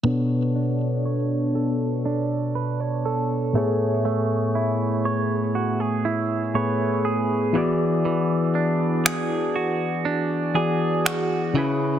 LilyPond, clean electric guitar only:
\new Staff \with { instrumentName = "Clean electric guitar" } { \time 4/4 \key e \mixolydian \tempo 4 = 60 b8 d'8 cis''8 a'8 d'8 b'16 cis''16 a'8 a8 | a8 e'8 cis''8 fis'16 gis'16 e'8 cis''8 gis'8 e8 | e8 d'8 gis'8 fis'8 d'8 gis'8 fis'8 cis8 | }